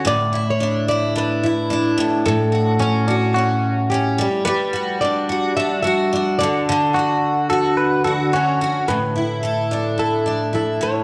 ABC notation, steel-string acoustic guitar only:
X:1
M:4/4
L:1/8
Q:"Swing 16ths" 1/4=109
K:Amix
V:1 name="Steel-string acoustic guitar"
A,, E D E D E D A,, | A,, F C F C2 C G, | G, F D F D F D D, | D, F2 F2 F C F |
A,, E A D E D E A,, |]